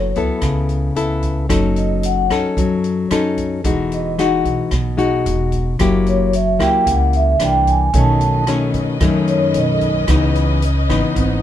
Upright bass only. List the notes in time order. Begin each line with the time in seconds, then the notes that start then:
Already playing: F#1
0.15 C#2
0.42 C#2
0.95 C#2
1.50 F#1
2.30 F#2
2.57 F#2
3.11 F#2
3.64 E1
4.45 B1
4.72 B1
5.26 E1
5.79 F#1
6.60 C#2
6.86 C#2
7.40 C2
7.93 B1
8.74 F#2
9.01 F#2
9.54 B1
10.08 C#2
10.89 G#1
11.16 G#1